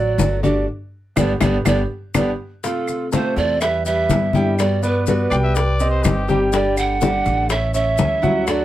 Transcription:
Already playing: upright bass A1, grand piano F#3 F#4, pan flute D5
0.18 upright bass G1, nylon-string guitar D3 A3 D4 F#4, high bongo, low bongo, high conga, maracas
0.43 nylon-string guitar A3 D4 F#4, grand piano D4 D5, pan flute G4, high bongo, high conga, maracas
1.16 upright bass G1, nylon-string guitar D3 G3 B3, grand piano B3 D4 G4, pan flute D5, low bongo, high conga, claves, maracas
1.41 upright bass G1, nylon-string guitar D3 G3 B3, grand piano B3 D4 G4, pan flute D5, low bongo, high conga, claves, maracas
1.65 upright bass G1, nylon-string guitar D3 G3 B3, grand piano B3 D4 G4, pan flute D5, low bongo, high conga, claves, maracas
2.14 upright bass G1, nylon-string guitar D3 G3 B3, grand piano B3 D4 G4, pan flute D5, low bongo, high conga, claves, maracas
2.63 nylon-string guitar C3 A3 C4 F4, grand piano F4 F5, pan flute A4, high bongo, high conga, maracas
2.88 high bongo, high conga, claves, maracas
3.12 nylon-string guitar C3 A3 C4 F4, grand piano A3 A4 C5, pan flute C5, high bongo, high conga, maracas
3.36 upright bass E2, pan flute D5, high bongo, maracas
3.61 grand piano G3 G4 B4, pan flute E5, muted nylon-string guitar stroke, high bongo, high conga, claves, maracas
3.85 grand piano G3 G4 B4, pan flute E5, high conga, maracas
4.09 upright bass G2, nylon-string guitar D3 G3 B3 E4, high bongo, low bongo, high conga, maracas
4.33 nylon-string guitar D3 G3 B3 E4, grand piano G3 G5, high bongo, high conga, maracas
4.58 nylon-string guitar G3 B3 F#4, pan flute D5, high bongo, high conga, claves, maracas
4.82 grand piano B3 B4 D5, pan flute B4, high bongo, high conga, maracas
5.07 nylon-string guitar G3 B3 F#4, grand piano B3 B4 D5, high bongo, high conga, maracas
5.30 upright bass C2, grand piano G3 G5, trumpet D5, high bongo, claves, maracas
5.44 trumpet E5
5.55 trumpet D5, muted nylon-string guitar stroke, high bongo, high conga, maracas
5.80 grand piano C4 G4 D#5, high conga, maracas
5.91 trumpet C5
6.04 upright bass G1, nylon-string guitar D#3 G3 C4 G4, trumpet G4, high bongo, low bongo, high conga, claves, maracas
6.28 nylon-string guitar D#3 G3 C4 G4, grand piano G3 G4 G5, high bongo, high conga, maracas
6.52 nylon-string guitar D3 G3 D4 G4, grand piano G3 G4 G5, pan flute D5, high bongo, high conga, maracas
6.77 pan flute F#5, high bongo, high conga, claves, maracas
7.01 nylon-string guitar D3 G3 D4 G4, grand piano D4 D5, high bongo, high conga, maracas
7.25 upright bass A1, high bongo, maracas
7.50 grand piano C#4 C#5 E5, pan flute E5, muted nylon-string guitar stroke, high bongo, high conga, claves, maracas
7.74 grand piano C#4 C#5 E5, pan flute E5, high conga, maracas
7.98 upright bass D2, nylon-string guitar E3 G3 C#4 E4, high bongo, low bongo, high conga, maracas
8.22 grand piano F#3 F#4 F#5, nylon-string guitar G3 C#4 E4, high bongo, high conga, maracas
8.47 nylon-string guitar D3 A3 D4 F#4, pan flute D5, high bongo, high conga, claves, maracas

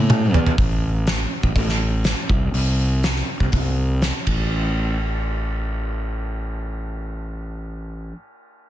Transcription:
Already playing: fingered electric bass A2
0.10 mid tom
0.33 fingered electric bass E2, floor tom
0.47 floor tom
0.58 fingered electric bass A1, kick, open hi-hat
1.07 snare, open hi-hat
1.43 fingered electric bass A1, kick
1.56 fingered electric bass A1, kick, open hi-hat
1.69 snare
2.04 snare, open hi-hat
2.29 fingered electric bass C2, kick
2.54 fingered electric bass C2, open hi-hat
3.03 snare, open hi-hat
3.16 snare
3.40 fingered electric bass C2, kick
3.52 fingered electric bass C2, kick, open hi-hat
4.02 snare, open hi-hat
4.27 fingered electric bass A1, kick, ride

